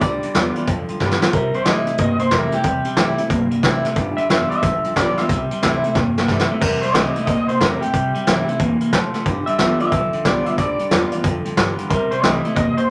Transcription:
0.01 D2 G2 D3 G3 D5, kick, closed hi-hat
0.23 G2 D3, muted upright bass stroke, closed hi-hat
0.34 E2 G2 E3 G3 B3 F4, snare, closed hi-hat
0.55 G2 E3 B3 F4, muted upright bass stroke, closed hi-hat
0.67 F2 G2 D3 F3, kick, closed hi-hat
0.88 G2 F3, muted upright bass stroke, closed hi-hat
1.00 G2 E3 G3 B3 F4, kick, snare
1.11 snare
1.21 G2 E3 B3 F4, muted upright bass stroke, snare
1.33 C3 G3 A#4, kick, closed hi-hat
1.54 C3 G3 C5, muted upright bass stroke, closed hi-hat
1.65 A2 C3 E3 G3 A3 C4 E4 D#5, snare, closed hi-hat
1.87 C3 A3 C4 E4, muted upright bass stroke, closed hi-hat
1.98 G2 C3 A#3 D#5, kick, closed hi-hat
2.19 C3 A#3 C5, muted upright bass stroke, closed hi-hat
2.31 F2 C3 E3 G3 A3 C4 E4 A#4, kick, snare, closed hi-hat
2.52 C3 A3 C4 E4 G4, muted upright bass stroke, closed hi-hat
2.63 E2 C3 G3, kick, closed hi-hat
2.85 C3 G3, muted upright bass stroke, closed hi-hat
2.96 C2 C3 E3 G3 A3 C4 E4, snare, closed hi-hat
3.18 C3 A3 C4 E4, muted upright bass stroke, closed hi-hat
3.30 B1 G2 C3 A#3, kick, closed hi-hat
3.51 C3 A#3, muted upright bass stroke, closed hi-hat
3.63 A1 C3 E3 G3 A3 C4 E4, kick, snare, closed hi-hat
3.85 C3 A3 C4 E4, muted upright bass stroke, snare, closed hi-hat
3.96 G1 G2 D3 G3, kick, closed hi-hat
4.17 G2 D3 E5, muted upright bass stroke, closed hi-hat
4.29 F1 G2 E3 G3 B3 F4 E5, snare, closed hi-hat
4.50 G2 E3 E5, muted upright bass stroke, closed hi-hat
4.63 A1 G2 D3 F3, kick, closed hi-hat
4.84 G2 F3, muted upright bass stroke, closed hi-hat
4.96 B1 G2 E3 G3 B3 F4 D5, kick, snare, closed hi-hat
5.17 G2 E3 B3 F4 E5, muted upright bass stroke, snare, closed hi-hat
5.29 C2 C3 G3, kick, closed hi-hat
5.50 C3 G3, muted upright bass stroke, closed hi-hat
5.62 D2 C3 E3 G3 A3 C4 E4, snare, closed hi-hat
5.84 C3 A3 C4 E4, muted upright bass stroke, closed hi-hat
5.95 E2 G2 C3 A#3, kick, snare
6.16 C3 A#3, muted upright bass stroke, snare
6.28 G2 C3 E3 G3 A3 C4 E4, kick, snare
6.40 snare
6.50 C3 A3 C4 E4, muted upright bass stroke
6.61 E2 C3 G3 A#4, kick, crash
6.82 C3 G3 C5, muted upright bass stroke, closed hi-hat
6.94 C2 C3 E3 G3 A3 C4 E4 D#5, snare, closed hi-hat
7.16 C3 A3 C4 E4, muted upright bass stroke, closed hi-hat
7.26 D2 G2 C3 A#3 D#5, kick, closed hi-hat
7.48 C3 A#3 C5, muted upright bass stroke, closed hi-hat
7.59 E2 C3 E3 G3 A3 C4 E4 A#4, kick, snare, closed hi-hat
7.81 C3 A3 C4 E4 G4, muted upright bass stroke, closed hi-hat
7.93 C2 C3 G3, kick, closed hi-hat
8.14 C3 G3, muted upright bass stroke, closed hi-hat
8.27 G1 C3 E3 G3 A3 C4 E4, snare, closed hi-hat
8.48 C3 A3 C4 E4, muted upright bass stroke, closed hi-hat
8.60 E1 C3 E3 A#3, kick, closed hi-hat
8.81 C3 A#3, muted upright bass stroke, closed hi-hat
8.93 F1 C3 F3 A3, kick, snare, closed hi-hat
9.14 C3 A3, muted upright bass stroke, snare, closed hi-hat
9.26 G1 G2 D3 G3, kick, closed hi-hat
9.46 G2 D3 E5, muted upright bass stroke, closed hi-hat
9.58 A1 G2 E3 G3 B3 F4 E5, snare, closed hi-hat
9.80 G2 E3 B3 F4 E5, muted upright bass stroke, closed hi-hat
9.92 B1 G2 D3 F3, kick, closed hi-hat
10.13 G2 F3, muted upright bass stroke, closed hi-hat
10.25 C2 G2 E3 G3 B3 F4 D5, kick, snare, closed hi-hat
10.46 G2 E3 B3 F4 E5, muted upright bass stroke, closed hi-hat
10.58 D2 G2 D3 G3 D5, kick, closed hi-hat
10.79 G2 D3, muted upright bass stroke, closed hi-hat
10.91 E2 G2 E3 G3 B3 F4, snare, closed hi-hat
11.12 G2 E3 B3 F4, muted upright bass stroke, closed hi-hat
11.24 F2 G2 D3 F3, kick, closed hi-hat
11.45 G2 F3, muted upright bass stroke, closed hi-hat
11.57 G2 E3 G3 B3 F4, kick, snare, closed hi-hat
11.78 G2 E3, muted upright bass stroke, closed hi-hat
11.90 C3 G3 A#4, kick, closed hi-hat
12.11 C3 G3 C5, muted upright bass stroke, closed hi-hat
12.23 C2 C3 E3 G3 A3 C4 E4 D#5, snare, closed hi-hat
12.45 C3 A3 C4 E4, muted upright bass stroke, closed hi-hat
12.56 E2 G2 C3 A#3 D#5, kick, closed hi-hat
12.77 C3 A#3 C5, muted upright bass stroke, closed hi-hat

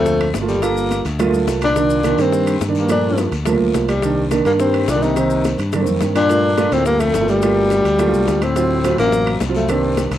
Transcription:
Already playing: D2 F2 A#2 A3 C4
0.06 high bongo, long guiro, maracas
0.21 high timbale, claves
0.34 G1, high bongo, low bongo, high conga, high timbale, low timbale, short guiro, maracas
0.41 A3 A#3 F4
0.47 D#2 G3, short guiro, maracas
0.61 G2 A#3 F4 A4, high bongo, high conga, high timbale, long guiro, claves, maracas
0.77 high conga, maracas
0.91 high bongo, high conga, high timbale, short guiro, maracas
1.05 D2, high bongo, high timbale, short guiro, maracas
1.19 A3 A#3 F4, high bongo, high conga, low conga, high timbale, long guiro, claves, maracas
1.26 A3 A#3 F4
1.33 high bongo, high conga, low conga, maracas
1.47 C2, high bongo, low bongo, high conga, high timbale, low timbale, short guiro, maracas
1.61 A#2 D4, high bongo, high conga, high timbale, short guiro, claves, maracas
1.75 D#3 A#3 D4, high bongo, high conga, high timbale, long guiro, maracas
1.90 high conga, maracas
2.03 D#3 A#3 D4, high bongo, high conga, high timbale, short guiro, claves, maracas
2.18 G2 D#3 A#3 C4 D4, high timbale, short guiro, maracas
2.32 high bongo, high conga, long guiro, maracas
2.47 high conga, high timbale, claves, maracas
2.61 G2, high bongo, low bongo, high conga, high timbale, short guiro, maracas
2.68 D#3 A#3 D4
2.75 G2 A#3, high conga, short guiro, maracas
2.88 A#2 F3 A3 A#3 D4, high bongo, high conga, high timbale, long guiro, claves, maracas
3.03 high conga
3.18 high bongo, high conga, high timbale, short guiro, maracas
3.31 D2, high bongo, high conga, high timbale, short guiro, maracas
3.46 F3 A3 A#3, high bongo, high conga, low conga, high timbale, long guiro, claves, maracas
3.53 F3 A3 A#3
3.60 D2, high conga, low conga
3.74 C2, high bongo, low bongo, high conga, high timbale, low timbale, short guiro, maracas
3.88 D#2 G3, high bongo, high conga, high timbale, short guiro, claves, maracas
4.02 D#3 A#3 D4, high bongo, high conga, high timbale, long guiro, maracas
4.17 high conga
4.31 D#3 A#3 D4, high bongo, high conga, high timbale, short guiro, claves, maracas
4.45 G2 D#3 A#3 D4, high timbale, short guiro, maracas
4.60 G2 C4, high bongo, high conga, long guiro, maracas
4.74 high conga, high timbale, claves
4.88 C2 A#2 D4, high bongo, low bongo, high conga, high timbale, low timbale, short guiro, maracas
4.95 D#3 A#3 D4
5.02 C3 D#4, high conga, short guiro, maracas
5.16 D#3 A#3 C4, high bongo, high conga, high timbale, claves, maracas
5.30 high conga, maracas
5.44 high bongo, high conga, high timbale, short guiro, maracas
5.58 G2, high bongo, high timbale, short guiro, maracas
5.72 D#3 A#3 D4, high bongo, high conga, low conga, high timbale, long guiro, claves, maracas
5.81 D#3 A#3 C4
5.87 F2, high bongo, high conga, low conga, maracas
6.01 G2, high bongo, low bongo, high conga, high timbale, low timbale, short guiro, maracas
6.15 A#2 D4, high bongo, high conga, high timbale, short guiro, claves, maracas
6.29 A3 A#3 F4, high bongo, high timbale, maracas
6.44 high conga
6.57 A3 A#3 F4, high bongo, high conga, high timbale, short guiro, claves, maracas
6.72 D2 A2 A3 A#3 C4 F4, high conga, high timbale, short guiro, maracas
6.86 G2 A#3, high bongo, long guiro, maracas
7.00 F2 A3, high timbale, claves, maracas
7.14 G1, high bongo, low bongo, high conga, high timbale, short guiro, maracas
7.21 A3 A#3 F4
7.28 D2 G3, short guiro, maracas
7.42 A3 A#3 F4, high bongo, high conga, high timbale, long guiro, claves, maracas
7.57 high conga
7.70 high bongo, high conga, high timbale, short guiro, maracas
7.84 D2, high bongo, high timbale, short guiro, maracas
7.98 A3 A#3 F4, high bongo, high conga, low conga, high timbale, long guiro, claves, maracas
8.06 A3 A#3 F4
8.13 C2, maracas
8.27 D2, high bongo, low bongo, high conga, high timbale, low timbale, short guiro, maracas
8.42 A2 C4, high conga, high timbale, short guiro, claves, maracas
8.56 F#3 C4 F4, high bongo, high conga, high timbale, long guiro, maracas
8.70 high conga
8.84 F#3 C4 F4, high bongo, high conga, high timbale, short guiro, claves, maracas
8.98 A1 F#2 F#3 A#3 C4 F4, high timbale, short guiro, maracas
9.12 high bongo, high conga, long guiro, maracas
9.26 high conga, high timbale, claves
9.40 C2, high bongo, low bongo, high conga, high timbale, low timbale, short guiro, maracas
9.48 F#3 C4 F4
9.55 F2 A3, short guiro, maracas
9.69 G2 D#3 A#3 C4 D4, high bongo, high conga, high timbale, long guiro, claves, maracas
9.84 high conga
9.97 high bongo, high conga, high timbale, short guiro, maracas
10.11 C2, high bongo, high conga, high timbale, short guiro, maracas

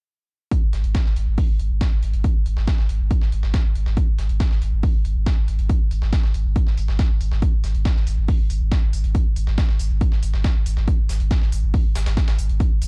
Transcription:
0.52 kick, closed hi-hat
0.62 G#1
0.73 G#1, snare, closed hi-hat, open hi-hat
0.84 G#1, closed hi-hat
0.95 kick, snare, closed hi-hat
1.06 G#1, snare
1.16 G#1, closed hi-hat, open hi-hat
1.27 G#1
1.38 kick, open hi-hat
1.49 G#1
1.59 G#1, closed hi-hat, open hi-hat
1.70 G#1
1.81 kick, snare, closed hi-hat
1.92 G#1
2.03 G#1, closed hi-hat, open hi-hat
2.13 G#1, closed hi-hat
2.24 kick, closed hi-hat
2.35 G#1
2.46 G#1, closed hi-hat, open hi-hat
2.57 G#1, snare
2.67 kick, snare, closed hi-hat
2.78 G#1, snare
2.89 G#1, closed hi-hat, open hi-hat
3.00 G#1
3.11 kick, closed hi-hat
3.21 G#1, snare
3.32 G#1, closed hi-hat, open hi-hat
3.43 G#1, snare
3.54 kick, snare, closed hi-hat
3.64 G#1
3.75 G#1, closed hi-hat, open hi-hat
3.86 G#1, snare
3.97 kick, closed hi-hat
4.08 G#1
4.18 G#1, snare, closed hi-hat, open hi-hat
4.29 G#1, closed hi-hat
4.40 kick, snare, closed hi-hat
4.51 G#1, snare
4.62 G#1, closed hi-hat, open hi-hat
4.72 G#1
4.83 kick, open hi-hat
4.94 G#1
5.05 G#1, closed hi-hat, open hi-hat
5.16 G#1
5.26 kick, snare, closed hi-hat
5.37 G#1
5.48 G#1, closed hi-hat, open hi-hat
5.59 G#1, closed hi-hat
5.70 kick, closed hi-hat
5.80 G#1
5.91 G#1, closed hi-hat, open hi-hat
6.02 G#1, snare
6.13 kick, snare, closed hi-hat
6.24 G#1, snare
6.34 G#1, closed hi-hat, open hi-hat
6.45 G#1
6.56 kick, closed hi-hat
6.67 G#1, snare
6.77 G#1, closed hi-hat, open hi-hat
6.88 G#1, snare
6.99 kick, snare, closed hi-hat
7.10 G#1
7.21 G#1, closed hi-hat, open hi-hat
7.31 G#1, snare
7.42 kick, closed hi-hat
7.53 G#1
7.64 G#1, snare, closed hi-hat, open hi-hat
7.75 G#1, closed hi-hat
7.85 kick, snare, closed hi-hat
7.96 G#1, snare
8.07 G#1, closed hi-hat, open hi-hat
8.18 G#1
8.28 kick, open hi-hat
8.39 G#1
8.50 G#1, closed hi-hat, open hi-hat
8.61 G#1
8.72 kick, snare, closed hi-hat
8.83 G#1
8.93 G#1, closed hi-hat, open hi-hat
9.04 G#1, closed hi-hat
9.15 kick, closed hi-hat
9.26 G#1
9.36 G#1, closed hi-hat, open hi-hat
9.47 G#1, snare
9.58 kick, snare, closed hi-hat
9.69 G#1, snare
9.80 G#1, closed hi-hat, open hi-hat
9.90 G#1
10.01 kick, closed hi-hat
10.12 G#1, snare
10.23 G#1, closed hi-hat, open hi-hat
10.34 G#1, snare
10.44 kick, snare, closed hi-hat
10.55 G#1
10.66 G#1, closed hi-hat, open hi-hat
10.77 G#1, snare
10.88 kick, closed hi-hat
10.98 G#1
11.09 G#1, snare, closed hi-hat, open hi-hat
11.20 G#1, closed hi-hat
11.31 kick, snare, closed hi-hat
11.42 G#1, snare
11.52 G#1, closed hi-hat, open hi-hat
11.63 G#1
11.74 kick, open hi-hat
11.85 G#1
11.95 G#1, snare, closed hi-hat, open hi-hat
12.06 G#1, snare, closed hi-hat
12.17 kick, snare, closed hi-hat
12.28 G#1, snare, closed hi-hat
12.39 G#1, closed hi-hat, open hi-hat
12.49 G#1, closed hi-hat
12.60 kick, closed hi-hat
12.71 G#1
12.82 G#1, closed hi-hat, open hi-hat

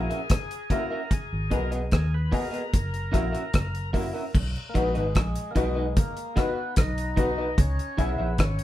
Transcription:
Already playing: A#3 E4 F#4 G#4
0.10 C#4 F#4 A#4 E5, closed hi-hat
0.30 kick, cross-stick, closed hi-hat
0.51 closed hi-hat
0.70 A#3 C#4 E4 F#4 A#4 E5, kick, closed hi-hat
0.91 C#4 F#4 A#4 E5
1.11 G#4, kick, closed hi-hat
1.33 G#1
1.51 B1 B3 F#4 G#4 A#4 D#5, kick, closed hi-hat
1.71 B3 F#4 G#4 D#5, closed hi-hat
1.92 D#2 G#4, kick, cross-stick, closed hi-hat
2.14 B4
2.32 B3 F#4 G#4 A#4 D#5, kick, open hi-hat
2.51 B3 F#4 G#4 D#5, closed hi-hat
2.74 F#1, kick, closed hi-hat
2.94 closed hi-hat
3.12 A#1 A#3 C#4 E4 F#4 A#4 E5, kick, cross-stick, closed hi-hat
3.32 C#4 F#4 A#4 E5, closed hi-hat
3.54 F#1, kick, cross-stick, closed hi-hat
3.75 closed hi-hat
3.93 A#3 C#4 E4 F#4 A#4 E5, kick, open hi-hat
4.13 C#4 F#4 A#4 E5
4.35 B1, kick, crash
4.56 closed hi-hat
4.69 A#3
4.74 A#1 G#3 B3 D#4 F#4 B4 D#5, kick, closed hi-hat
4.95 G#1 D#4 F#4 B4 D#5, closed hi-hat
5.15 A#1, kick, cross-stick, closed hi-hat
5.36 closed hi-hat
5.51 A#3
5.55 B1 B3 D#4 F#4 B4 D#5, kick, closed hi-hat
5.59 G#3
5.75 D#4 F#4 B4 D#5
5.97 A#3, kick, closed hi-hat
6.17 closed hi-hat
6.36 B3 D#4 F#4 B4 D#5, kick, cross-stick, closed hi-hat
6.76 B1 D#4, kick, cross-stick, closed hi-hat
6.98 closed hi-hat
7.16 B3 D#4 F#4 B4 D#5, kick, closed hi-hat
7.38 D#4 F#4 B4 D#5
7.58 C#2 C#4, kick, closed hi-hat
7.79 closed hi-hat
7.98 B1 B3 C#4 E4 G#4 C#5 E5, kick, closed hi-hat
8.18 A#1 E4 G#4 C#5 E5
8.38 G#1 C#4, kick, cross-stick, closed hi-hat
8.59 closed hi-hat

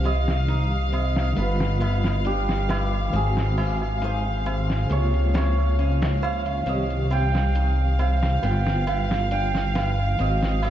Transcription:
Already playing: C2 D#3 G3 C4 G4 F5
0.04 C4 D#5, closed hi-hat, tabla na
0.28 snare, tabla na
0.48 D#4, closed hi-hat, tabla na
0.92 C4, closed hi-hat, tabla na
1.16 snare, tabla na
1.33 D3 G3 B3, closed hi-hat
1.37 G1 B3 B4, tabla na
1.42 F4
1.60 snare
1.80 B3, closed hi-hat, tabla na
2.04 snare, tabla na
2.25 D4 G4, closed hi-hat, tabla na
2.49 snare
2.69 B4, snare, closed hi-hat, tabla na
2.94 tabla na
3.10 G#1 D#3 G#3 C4, closed hi-hat
3.14 C4 G#4, tabla na
3.19 F#4
3.37 snare
3.57 C4, open hi-hat, tabla na
3.82 tabla na
4.01 D#4 C5, closed hi-hat, tabla na
4.46 C4, closed hi-hat, tabla na
4.70 snare, tabla na
4.86 C3 C#3 G#3
4.90 C#2 A#3 C#5, closed hi-hat, tabla na
4.96 F4
5.14 closed hi-hat
5.34 C4 C#5, snare, closed hi-hat, tabla na
5.58 tabla na
5.79 C#4, closed hi-hat, tabla na
6.02 snare, closed hi-hat
6.22 C5 F5, tabla na
6.46 closed hi-hat, tabla na
6.63 C2 D#3 G3 C4, closed hi-hat
6.67 C4 D#5 F5, tabla na
6.73 G4
6.90 closed hi-hat
7.10 C4 G5, closed hi-hat, tabla na
7.35 snare, tabla na
7.55 D#4, closed hi-hat, tabla na
7.99 C4 F5, closed hi-hat, tabla na
8.23 snare, tabla na
8.39 D3 G3 B3, closed hi-hat, tabla na
8.43 G1 B3 G5
8.49 F4
8.67 snare
8.87 B3 F5, closed hi-hat, tabla na
9.11 snare, tabla na
9.31 D4 G5, closed hi-hat, tabla na
9.55 snare
9.75 B4 F5, snare, closed hi-hat, tabla na
9.99 tabla na
10.15 D#3 G#3, closed hi-hat, tabla na
10.19 G#1 C4 D#5
10.25 F#4
10.43 snare
10.63 C4 D#5, open hi-hat, tabla na

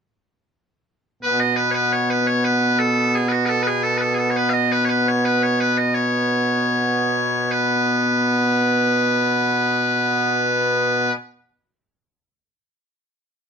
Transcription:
1.23 B2 B3 B4
1.40 D#5
1.56 B4
1.71 B4 C#5
1.92 C#5
2.10 B4
2.27 C#5
2.44 B4
2.79 A4
3.15 G#4
3.29 F#4 B4
3.46 A4 B4
3.63 B4
3.67 G#4
3.83 A4
3.98 A4 B4
4.14 G#4
4.18 A4
4.30 C#5
4.36 B4
4.49 D#5 F5
4.72 B4
4.85 C#5
4.89 B4
5.08 C#5
5.25 B4
5.43 C#5
5.60 B4
5.77 D#5
5.94 C#5
7.51 B4

